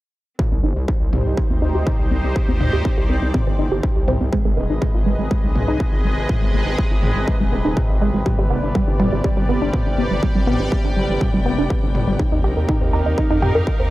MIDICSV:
0, 0, Header, 1, 7, 480
1, 0, Start_track
1, 0, Key_signature, -3, "minor"
1, 0, Tempo, 491803
1, 382, Time_signature, 4, 2, 24, 8
1, 13568, End_track
2, 0, Start_track
2, 0, Title_t, "String section"
2, 0, Program_c, 0, 48
2, 383, Note_on_c, 0, 60, 76
2, 1070, Note_on_c, 0, 67, 93
2, 1581, Note_on_c, 0, 74, 93
2, 4221, Note_off_c, 0, 74, 0
2, 4222, Note_off_c, 0, 60, 0
2, 4223, Note_off_c, 0, 67, 0
2, 4223, Note_on_c, 0, 68, 96
2, 4527, Note_on_c, 0, 75, 85
2, 4814, Note_on_c, 0, 80, 73
2, 8060, Note_off_c, 0, 80, 0
2, 8060, Note_on_c, 0, 67, 86
2, 8062, Note_off_c, 0, 68, 0
2, 8062, Note_off_c, 0, 75, 0
2, 8751, Note_on_c, 0, 74, 72
2, 9216, Note_on_c, 0, 79, 88
2, 11904, Note_on_c, 0, 63, 89
2, 12008, Note_on_c, 0, 70, 95
2, 12505, Note_on_c, 0, 77, 74
2, 13196, Note_off_c, 0, 79, 0
2, 13281, Note_off_c, 0, 67, 0
2, 13440, Note_off_c, 0, 74, 0
2, 13568, Note_off_c, 0, 63, 0
2, 13568, Note_off_c, 0, 70, 0
2, 13568, Note_off_c, 0, 77, 0
2, 13568, End_track
3, 0, Start_track
3, 0, Title_t, "Analog synth pad"
3, 0, Program_c, 1, 89
3, 381, Note_on_c, 1, 67, 75
3, 382, Note_on_c, 1, 63, 81
3, 382, Note_on_c, 1, 72, 88
3, 4183, Note_off_c, 1, 67, 0
3, 4183, Note_off_c, 1, 72, 0
3, 4184, Note_off_c, 1, 63, 0
3, 4219, Note_on_c, 1, 56, 79
3, 4219, Note_on_c, 1, 68, 74
3, 4219, Note_on_c, 1, 71, 74
3, 4219, Note_on_c, 1, 75, 94
3, 8022, Note_off_c, 1, 56, 0
3, 8022, Note_off_c, 1, 68, 0
3, 8022, Note_off_c, 1, 75, 0
3, 8061, Note_on_c, 1, 55, 80
3, 8061, Note_on_c, 1, 67, 73
3, 8061, Note_on_c, 1, 74, 89
3, 11861, Note_off_c, 1, 71, 0
3, 11863, Note_off_c, 1, 55, 0
3, 11863, Note_off_c, 1, 67, 0
3, 11863, Note_off_c, 1, 74, 0
3, 11901, Note_on_c, 1, 63, 82
3, 11901, Note_on_c, 1, 67, 74
3, 11902, Note_on_c, 1, 70, 91
3, 13568, Note_off_c, 1, 63, 0
3, 13568, Note_off_c, 1, 67, 0
3, 13568, Note_off_c, 1, 70, 0
3, 13568, End_track
4, 0, Start_track
4, 0, Title_t, "Synth arpeggio sound"
4, 0, Program_c, 2, 84
4, 381, Note_on_c, 2, 60, 85
4, 486, Note_off_c, 2, 60, 0
4, 507, Note_on_c, 2, 60, 97
4, 571, Note_off_c, 2, 60, 0
4, 621, Note_on_c, 2, 63, 101
4, 726, Note_off_c, 2, 63, 0
4, 746, Note_on_c, 2, 67, 74
4, 785, Note_off_c, 2, 67, 0
4, 861, Note_on_c, 2, 60, 79
4, 931, Note_off_c, 2, 60, 0
4, 986, Note_on_c, 2, 67, 76
4, 1051, Note_off_c, 2, 67, 0
4, 1100, Note_on_c, 2, 60, 99
4, 1171, Note_off_c, 2, 60, 0
4, 1226, Note_on_c, 2, 60, 74
4, 1265, Note_off_c, 2, 60, 0
4, 1342, Note_on_c, 2, 60, 78
4, 1447, Note_off_c, 2, 60, 0
4, 1466, Note_on_c, 2, 60, 96
4, 1531, Note_off_c, 2, 60, 0
4, 1582, Note_on_c, 2, 63, 95
4, 1687, Note_off_c, 2, 63, 0
4, 1706, Note_on_c, 2, 67, 104
4, 1803, Note_off_c, 2, 67, 0
4, 1945, Note_on_c, 2, 67, 76
4, 2011, Note_off_c, 2, 67, 0
4, 2061, Note_on_c, 2, 60, 97
4, 2131, Note_off_c, 2, 60, 0
4, 2187, Note_on_c, 2, 60, 74
4, 2226, Note_off_c, 2, 60, 0
4, 2302, Note_on_c, 2, 60, 79
4, 2407, Note_off_c, 2, 60, 0
4, 2426, Note_on_c, 2, 60, 98
4, 2491, Note_off_c, 2, 60, 0
4, 2541, Note_on_c, 2, 63, 99
4, 2646, Note_off_c, 2, 63, 0
4, 2666, Note_on_c, 2, 67, 75
4, 2705, Note_off_c, 2, 67, 0
4, 2781, Note_on_c, 2, 60, 79
4, 2851, Note_off_c, 2, 60, 0
4, 2906, Note_on_c, 2, 67, 76
4, 2971, Note_off_c, 2, 67, 0
4, 3022, Note_on_c, 2, 60, 98
4, 3092, Note_off_c, 2, 60, 0
4, 3148, Note_on_c, 2, 60, 74
4, 3186, Note_off_c, 2, 60, 0
4, 3263, Note_on_c, 2, 60, 79
4, 3367, Note_off_c, 2, 60, 0
4, 3387, Note_on_c, 2, 60, 92
4, 3452, Note_off_c, 2, 60, 0
4, 3503, Note_on_c, 2, 63, 99
4, 3607, Note_off_c, 2, 63, 0
4, 3628, Note_on_c, 2, 67, 100
4, 3724, Note_off_c, 2, 67, 0
4, 3869, Note_on_c, 2, 67, 80
4, 3932, Note_off_c, 2, 67, 0
4, 3983, Note_on_c, 2, 60, 101
4, 4052, Note_off_c, 2, 60, 0
4, 4108, Note_on_c, 2, 60, 71
4, 4146, Note_off_c, 2, 60, 0
4, 4224, Note_on_c, 2, 56, 84
4, 4328, Note_off_c, 2, 56, 0
4, 4347, Note_on_c, 2, 56, 95
4, 4411, Note_off_c, 2, 56, 0
4, 4462, Note_on_c, 2, 59, 102
4, 4567, Note_off_c, 2, 59, 0
4, 4587, Note_on_c, 2, 63, 77
4, 4625, Note_off_c, 2, 63, 0
4, 4701, Note_on_c, 2, 56, 79
4, 4771, Note_off_c, 2, 56, 0
4, 4826, Note_on_c, 2, 65, 76
4, 4891, Note_off_c, 2, 65, 0
4, 4941, Note_on_c, 2, 56, 99
4, 5011, Note_off_c, 2, 56, 0
4, 5066, Note_on_c, 2, 56, 74
4, 5105, Note_off_c, 2, 56, 0
4, 5181, Note_on_c, 2, 56, 80
4, 5286, Note_off_c, 2, 56, 0
4, 5306, Note_on_c, 2, 56, 92
4, 5371, Note_off_c, 2, 56, 0
4, 5421, Note_on_c, 2, 59, 102
4, 5526, Note_off_c, 2, 59, 0
4, 5546, Note_on_c, 2, 63, 103
4, 5643, Note_off_c, 2, 63, 0
4, 5785, Note_on_c, 2, 65, 75
4, 5851, Note_off_c, 2, 65, 0
4, 5902, Note_on_c, 2, 56, 100
4, 5972, Note_off_c, 2, 56, 0
4, 6027, Note_on_c, 2, 56, 74
4, 6065, Note_off_c, 2, 56, 0
4, 6142, Note_on_c, 2, 56, 80
4, 6247, Note_off_c, 2, 56, 0
4, 6266, Note_on_c, 2, 56, 93
4, 6331, Note_off_c, 2, 56, 0
4, 6382, Note_on_c, 2, 59, 106
4, 6487, Note_off_c, 2, 59, 0
4, 6507, Note_on_c, 2, 63, 77
4, 6546, Note_off_c, 2, 63, 0
4, 6623, Note_on_c, 2, 56, 79
4, 6692, Note_off_c, 2, 56, 0
4, 6746, Note_on_c, 2, 65, 77
4, 6811, Note_off_c, 2, 65, 0
4, 6862, Note_on_c, 2, 56, 100
4, 6932, Note_off_c, 2, 56, 0
4, 6987, Note_on_c, 2, 56, 73
4, 7025, Note_off_c, 2, 56, 0
4, 7101, Note_on_c, 2, 56, 78
4, 7206, Note_off_c, 2, 56, 0
4, 7226, Note_on_c, 2, 56, 97
4, 7291, Note_off_c, 2, 56, 0
4, 7342, Note_on_c, 2, 59, 97
4, 7447, Note_off_c, 2, 59, 0
4, 7466, Note_on_c, 2, 63, 101
4, 7563, Note_off_c, 2, 63, 0
4, 7706, Note_on_c, 2, 65, 79
4, 7771, Note_off_c, 2, 65, 0
4, 7822, Note_on_c, 2, 56, 100
4, 7892, Note_off_c, 2, 56, 0
4, 7946, Note_on_c, 2, 56, 73
4, 7985, Note_off_c, 2, 56, 0
4, 8062, Note_on_c, 2, 55, 84
4, 8167, Note_off_c, 2, 55, 0
4, 8186, Note_on_c, 2, 55, 98
4, 8251, Note_off_c, 2, 55, 0
4, 8299, Note_on_c, 2, 59, 103
4, 8406, Note_off_c, 2, 59, 0
4, 8425, Note_on_c, 2, 62, 76
4, 8464, Note_off_c, 2, 62, 0
4, 8540, Note_on_c, 2, 55, 77
4, 8611, Note_off_c, 2, 55, 0
4, 8665, Note_on_c, 2, 62, 74
4, 8731, Note_off_c, 2, 62, 0
4, 8781, Note_on_c, 2, 55, 101
4, 8851, Note_off_c, 2, 55, 0
4, 8906, Note_on_c, 2, 55, 78
4, 8945, Note_off_c, 2, 55, 0
4, 9021, Note_on_c, 2, 55, 79
4, 9126, Note_off_c, 2, 55, 0
4, 9146, Note_on_c, 2, 55, 93
4, 9211, Note_off_c, 2, 55, 0
4, 9261, Note_on_c, 2, 59, 100
4, 9366, Note_off_c, 2, 59, 0
4, 9387, Note_on_c, 2, 62, 103
4, 9484, Note_off_c, 2, 62, 0
4, 9627, Note_on_c, 2, 62, 74
4, 9691, Note_off_c, 2, 62, 0
4, 9741, Note_on_c, 2, 59, 76
4, 9811, Note_off_c, 2, 59, 0
4, 9865, Note_on_c, 2, 55, 73
4, 9904, Note_off_c, 2, 55, 0
4, 9981, Note_on_c, 2, 55, 82
4, 10086, Note_off_c, 2, 55, 0
4, 10105, Note_on_c, 2, 55, 96
4, 10170, Note_off_c, 2, 55, 0
4, 10221, Note_on_c, 2, 59, 104
4, 10326, Note_off_c, 2, 59, 0
4, 10344, Note_on_c, 2, 62, 76
4, 10384, Note_off_c, 2, 62, 0
4, 10461, Note_on_c, 2, 55, 78
4, 10531, Note_off_c, 2, 55, 0
4, 10586, Note_on_c, 2, 62, 77
4, 10651, Note_off_c, 2, 62, 0
4, 10701, Note_on_c, 2, 55, 103
4, 10771, Note_off_c, 2, 55, 0
4, 10826, Note_on_c, 2, 55, 74
4, 10865, Note_off_c, 2, 55, 0
4, 10942, Note_on_c, 2, 55, 76
4, 11047, Note_off_c, 2, 55, 0
4, 11067, Note_on_c, 2, 55, 96
4, 11131, Note_off_c, 2, 55, 0
4, 11182, Note_on_c, 2, 59, 100
4, 11287, Note_off_c, 2, 59, 0
4, 11306, Note_on_c, 2, 62, 101
4, 11403, Note_off_c, 2, 62, 0
4, 11547, Note_on_c, 2, 62, 79
4, 11611, Note_off_c, 2, 62, 0
4, 11661, Note_on_c, 2, 59, 75
4, 11731, Note_off_c, 2, 59, 0
4, 11785, Note_on_c, 2, 55, 73
4, 11824, Note_off_c, 2, 55, 0
4, 11901, Note_on_c, 2, 63, 79
4, 12006, Note_off_c, 2, 63, 0
4, 12025, Note_on_c, 2, 63, 94
4, 12091, Note_off_c, 2, 63, 0
4, 12142, Note_on_c, 2, 67, 103
4, 12247, Note_off_c, 2, 67, 0
4, 12267, Note_on_c, 2, 70, 72
4, 12305, Note_off_c, 2, 70, 0
4, 12383, Note_on_c, 2, 63, 79
4, 12452, Note_off_c, 2, 63, 0
4, 12506, Note_on_c, 2, 72, 79
4, 12571, Note_off_c, 2, 72, 0
4, 12622, Note_on_c, 2, 63, 103
4, 12692, Note_off_c, 2, 63, 0
4, 12748, Note_on_c, 2, 63, 75
4, 12786, Note_off_c, 2, 63, 0
4, 12863, Note_on_c, 2, 63, 76
4, 12967, Note_off_c, 2, 63, 0
4, 12986, Note_on_c, 2, 63, 100
4, 13051, Note_off_c, 2, 63, 0
4, 13100, Note_on_c, 2, 67, 100
4, 13206, Note_off_c, 2, 67, 0
4, 13226, Note_on_c, 2, 70, 102
4, 13323, Note_off_c, 2, 70, 0
4, 13465, Note_on_c, 2, 72, 76
4, 13530, Note_off_c, 2, 72, 0
4, 13568, End_track
5, 0, Start_track
5, 0, Title_t, "Synth drone"
5, 0, Program_c, 3, 95
5, 382, Note_on_c, 3, 48, 73
5, 13568, Note_off_c, 3, 48, 0
5, 13568, End_track
6, 0, Start_track
6, 0, Title_t, "Analog synth bass"
6, 0, Program_c, 4, 38
6, 505, Note_on_c, 4, 36, 81
6, 595, Note_off_c, 4, 36, 0
6, 619, Note_on_c, 4, 31, 102
6, 716, Note_off_c, 4, 31, 0
6, 745, Note_on_c, 4, 36, 92
6, 835, Note_off_c, 4, 36, 0
6, 984, Note_on_c, 4, 36, 87
6, 1074, Note_off_c, 4, 36, 0
6, 1100, Note_on_c, 4, 36, 103
6, 1197, Note_off_c, 4, 36, 0
6, 1225, Note_on_c, 4, 36, 92
6, 1315, Note_off_c, 4, 36, 0
6, 1466, Note_on_c, 4, 38, 86
6, 1555, Note_off_c, 4, 38, 0
6, 1581, Note_on_c, 4, 38, 96
6, 1677, Note_off_c, 4, 38, 0
6, 1706, Note_on_c, 4, 38, 89
6, 1795, Note_off_c, 4, 38, 0
6, 1946, Note_on_c, 4, 36, 87
6, 2035, Note_off_c, 4, 36, 0
6, 2061, Note_on_c, 4, 36, 94
6, 2157, Note_off_c, 4, 36, 0
6, 2186, Note_on_c, 4, 36, 89
6, 2275, Note_off_c, 4, 36, 0
6, 2425, Note_on_c, 4, 38, 88
6, 2515, Note_off_c, 4, 38, 0
6, 2541, Note_on_c, 4, 38, 101
6, 2637, Note_off_c, 4, 38, 0
6, 2666, Note_on_c, 4, 38, 91
6, 2755, Note_off_c, 4, 38, 0
6, 2906, Note_on_c, 4, 36, 87
6, 2995, Note_off_c, 4, 36, 0
6, 3020, Note_on_c, 4, 36, 100
6, 3117, Note_off_c, 4, 36, 0
6, 3146, Note_on_c, 4, 36, 94
6, 3235, Note_off_c, 4, 36, 0
6, 3386, Note_on_c, 4, 31, 85
6, 3475, Note_off_c, 4, 31, 0
6, 3502, Note_on_c, 4, 31, 98
6, 3598, Note_off_c, 4, 31, 0
6, 3625, Note_on_c, 4, 31, 86
6, 3714, Note_off_c, 4, 31, 0
6, 3866, Note_on_c, 4, 36, 86
6, 3955, Note_off_c, 4, 36, 0
6, 3980, Note_on_c, 4, 36, 93
6, 4077, Note_off_c, 4, 36, 0
6, 4104, Note_on_c, 4, 36, 85
6, 4194, Note_off_c, 4, 36, 0
6, 4344, Note_on_c, 4, 32, 88
6, 4434, Note_off_c, 4, 32, 0
6, 4459, Note_on_c, 4, 27, 99
6, 4556, Note_off_c, 4, 27, 0
6, 4583, Note_on_c, 4, 32, 91
6, 4673, Note_off_c, 4, 32, 0
6, 4823, Note_on_c, 4, 32, 83
6, 4914, Note_off_c, 4, 32, 0
6, 4939, Note_on_c, 4, 32, 103
6, 5036, Note_off_c, 4, 32, 0
6, 5065, Note_on_c, 4, 32, 96
6, 5154, Note_off_c, 4, 32, 0
6, 5305, Note_on_c, 4, 35, 81
6, 5395, Note_off_c, 4, 35, 0
6, 5420, Note_on_c, 4, 35, 97
6, 5517, Note_off_c, 4, 35, 0
6, 5545, Note_on_c, 4, 35, 87
6, 5635, Note_off_c, 4, 35, 0
6, 5784, Note_on_c, 4, 32, 92
6, 5874, Note_off_c, 4, 32, 0
6, 5900, Note_on_c, 4, 32, 96
6, 5997, Note_off_c, 4, 32, 0
6, 6024, Note_on_c, 4, 32, 86
6, 6114, Note_off_c, 4, 32, 0
6, 6265, Note_on_c, 4, 32, 85
6, 6354, Note_off_c, 4, 32, 0
6, 6380, Note_on_c, 4, 32, 102
6, 6477, Note_off_c, 4, 32, 0
6, 6505, Note_on_c, 4, 32, 91
6, 6595, Note_off_c, 4, 32, 0
6, 6744, Note_on_c, 4, 32, 83
6, 6834, Note_off_c, 4, 32, 0
6, 6859, Note_on_c, 4, 32, 97
6, 6956, Note_off_c, 4, 32, 0
6, 6983, Note_on_c, 4, 32, 93
6, 7074, Note_off_c, 4, 32, 0
6, 7224, Note_on_c, 4, 27, 82
6, 7314, Note_off_c, 4, 27, 0
6, 7339, Note_on_c, 4, 27, 97
6, 7436, Note_off_c, 4, 27, 0
6, 7463, Note_on_c, 4, 27, 88
6, 7553, Note_off_c, 4, 27, 0
6, 7703, Note_on_c, 4, 32, 89
6, 7794, Note_off_c, 4, 32, 0
6, 7819, Note_on_c, 4, 32, 95
6, 7916, Note_off_c, 4, 32, 0
6, 7942, Note_on_c, 4, 32, 87
6, 8033, Note_off_c, 4, 32, 0
6, 8183, Note_on_c, 4, 31, 86
6, 8273, Note_off_c, 4, 31, 0
6, 8298, Note_on_c, 4, 29, 104
6, 8396, Note_off_c, 4, 29, 0
6, 8423, Note_on_c, 4, 31, 93
6, 8514, Note_off_c, 4, 31, 0
6, 8663, Note_on_c, 4, 31, 88
6, 8753, Note_off_c, 4, 31, 0
6, 8779, Note_on_c, 4, 31, 98
6, 8876, Note_off_c, 4, 31, 0
6, 8904, Note_on_c, 4, 31, 95
6, 8994, Note_off_c, 4, 31, 0
6, 9145, Note_on_c, 4, 31, 85
6, 9234, Note_off_c, 4, 31, 0
6, 9260, Note_on_c, 4, 31, 97
6, 9357, Note_off_c, 4, 31, 0
6, 9385, Note_on_c, 4, 31, 87
6, 9474, Note_off_c, 4, 31, 0
6, 9625, Note_on_c, 4, 31, 88
6, 9715, Note_off_c, 4, 31, 0
6, 9741, Note_on_c, 4, 31, 96
6, 9837, Note_off_c, 4, 31, 0
6, 9864, Note_on_c, 4, 31, 90
6, 9954, Note_off_c, 4, 31, 0
6, 10104, Note_on_c, 4, 32, 85
6, 10194, Note_off_c, 4, 32, 0
6, 10220, Note_on_c, 4, 32, 104
6, 10317, Note_off_c, 4, 32, 0
6, 10345, Note_on_c, 4, 32, 89
6, 10435, Note_off_c, 4, 32, 0
6, 10585, Note_on_c, 4, 31, 85
6, 10675, Note_off_c, 4, 31, 0
6, 10701, Note_on_c, 4, 31, 102
6, 10797, Note_off_c, 4, 31, 0
6, 10825, Note_on_c, 4, 31, 88
6, 10914, Note_off_c, 4, 31, 0
6, 11065, Note_on_c, 4, 29, 82
6, 11155, Note_off_c, 4, 29, 0
6, 11180, Note_on_c, 4, 29, 94
6, 11277, Note_off_c, 4, 29, 0
6, 11306, Note_on_c, 4, 29, 86
6, 11395, Note_off_c, 4, 29, 0
6, 11545, Note_on_c, 4, 31, 87
6, 11635, Note_off_c, 4, 31, 0
6, 11661, Note_on_c, 4, 31, 96
6, 11757, Note_off_c, 4, 31, 0
6, 11786, Note_on_c, 4, 31, 87
6, 11875, Note_off_c, 4, 31, 0
6, 12026, Note_on_c, 4, 39, 85
6, 12115, Note_off_c, 4, 39, 0
6, 12141, Note_on_c, 4, 34, 105
6, 12237, Note_off_c, 4, 34, 0
6, 12265, Note_on_c, 4, 39, 90
6, 12355, Note_off_c, 4, 39, 0
6, 12506, Note_on_c, 4, 39, 90
6, 12595, Note_off_c, 4, 39, 0
6, 12621, Note_on_c, 4, 39, 100
6, 12717, Note_off_c, 4, 39, 0
6, 12746, Note_on_c, 4, 39, 91
6, 12835, Note_off_c, 4, 39, 0
6, 12986, Note_on_c, 4, 41, 82
6, 13075, Note_off_c, 4, 41, 0
6, 13101, Note_on_c, 4, 41, 101
6, 13197, Note_off_c, 4, 41, 0
6, 13227, Note_on_c, 4, 41, 89
6, 13316, Note_off_c, 4, 41, 0
6, 13466, Note_on_c, 4, 39, 89
6, 13555, Note_off_c, 4, 39, 0
6, 13568, End_track
7, 0, Start_track
7, 0, Title_t, "Drums"
7, 380, Note_on_c, 9, 45, 86
7, 381, Note_on_c, 9, 36, 110
7, 478, Note_off_c, 9, 45, 0
7, 479, Note_off_c, 9, 36, 0
7, 861, Note_on_c, 9, 36, 113
7, 959, Note_off_c, 9, 36, 0
7, 1101, Note_on_c, 9, 45, 88
7, 1198, Note_off_c, 9, 45, 0
7, 1341, Note_on_c, 9, 36, 105
7, 1439, Note_off_c, 9, 36, 0
7, 1820, Note_on_c, 9, 45, 89
7, 1822, Note_on_c, 9, 36, 118
7, 1917, Note_off_c, 9, 45, 0
7, 1919, Note_off_c, 9, 36, 0
7, 2301, Note_on_c, 9, 36, 108
7, 2399, Note_off_c, 9, 36, 0
7, 2541, Note_on_c, 9, 45, 84
7, 2638, Note_off_c, 9, 45, 0
7, 2782, Note_on_c, 9, 36, 117
7, 2879, Note_off_c, 9, 36, 0
7, 3260, Note_on_c, 9, 45, 82
7, 3262, Note_on_c, 9, 36, 112
7, 3358, Note_off_c, 9, 45, 0
7, 3359, Note_off_c, 9, 36, 0
7, 3742, Note_on_c, 9, 36, 117
7, 3839, Note_off_c, 9, 36, 0
7, 3980, Note_on_c, 9, 45, 82
7, 4078, Note_off_c, 9, 45, 0
7, 4222, Note_on_c, 9, 36, 111
7, 4319, Note_off_c, 9, 36, 0
7, 4701, Note_on_c, 9, 45, 85
7, 4702, Note_on_c, 9, 36, 123
7, 4798, Note_off_c, 9, 45, 0
7, 4799, Note_off_c, 9, 36, 0
7, 5182, Note_on_c, 9, 36, 113
7, 5279, Note_off_c, 9, 36, 0
7, 5420, Note_on_c, 9, 45, 88
7, 5518, Note_off_c, 9, 45, 0
7, 5661, Note_on_c, 9, 36, 120
7, 5759, Note_off_c, 9, 36, 0
7, 6141, Note_on_c, 9, 36, 113
7, 6141, Note_on_c, 9, 45, 84
7, 6239, Note_off_c, 9, 36, 0
7, 6239, Note_off_c, 9, 45, 0
7, 6621, Note_on_c, 9, 36, 122
7, 6719, Note_off_c, 9, 36, 0
7, 6860, Note_on_c, 9, 45, 83
7, 6958, Note_off_c, 9, 45, 0
7, 7101, Note_on_c, 9, 36, 113
7, 7199, Note_off_c, 9, 36, 0
7, 7581, Note_on_c, 9, 36, 115
7, 7581, Note_on_c, 9, 45, 87
7, 7678, Note_off_c, 9, 36, 0
7, 7678, Note_off_c, 9, 45, 0
7, 8060, Note_on_c, 9, 45, 83
7, 8061, Note_on_c, 9, 36, 107
7, 8158, Note_off_c, 9, 36, 0
7, 8158, Note_off_c, 9, 45, 0
7, 8541, Note_on_c, 9, 36, 117
7, 8638, Note_off_c, 9, 36, 0
7, 8779, Note_on_c, 9, 45, 89
7, 8877, Note_off_c, 9, 45, 0
7, 9021, Note_on_c, 9, 36, 110
7, 9118, Note_off_c, 9, 36, 0
7, 9500, Note_on_c, 9, 45, 92
7, 9501, Note_on_c, 9, 36, 112
7, 9598, Note_off_c, 9, 45, 0
7, 9599, Note_off_c, 9, 36, 0
7, 9981, Note_on_c, 9, 36, 109
7, 10079, Note_off_c, 9, 36, 0
7, 10221, Note_on_c, 9, 45, 91
7, 10318, Note_off_c, 9, 45, 0
7, 10461, Note_on_c, 9, 36, 114
7, 10559, Note_off_c, 9, 36, 0
7, 10941, Note_on_c, 9, 45, 95
7, 10942, Note_on_c, 9, 36, 107
7, 11038, Note_off_c, 9, 45, 0
7, 11039, Note_off_c, 9, 36, 0
7, 11422, Note_on_c, 9, 36, 113
7, 11519, Note_off_c, 9, 36, 0
7, 11661, Note_on_c, 9, 45, 88
7, 11759, Note_off_c, 9, 45, 0
7, 11902, Note_on_c, 9, 36, 104
7, 11999, Note_off_c, 9, 36, 0
7, 12380, Note_on_c, 9, 45, 97
7, 12382, Note_on_c, 9, 36, 115
7, 12477, Note_off_c, 9, 45, 0
7, 12479, Note_off_c, 9, 36, 0
7, 12862, Note_on_c, 9, 36, 103
7, 12959, Note_off_c, 9, 36, 0
7, 13101, Note_on_c, 9, 45, 97
7, 13198, Note_off_c, 9, 45, 0
7, 13341, Note_on_c, 9, 36, 107
7, 13439, Note_off_c, 9, 36, 0
7, 13568, End_track
0, 0, End_of_file